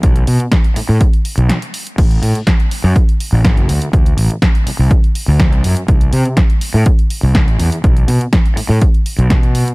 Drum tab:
CC |----------------|x---------------|----------------|----------------|
HH |xxoxxxo-xxoxxxox|xxoxxxo-xxo-xxox|xxoxxxo-xxo-xxox|xxoxxxo-xxo-xxox|
SD |----o-------o---|----o-------o---|----o-------o---|----o-------o---|
BD |o---o---o-------|o---o---o---o---|o---o---o---o---|o---o---o---o---|

CC |----------------|
HH |xxoxxxo-xxoxxxox|
SD |----o-------o---|
BD |o---o---o---o---|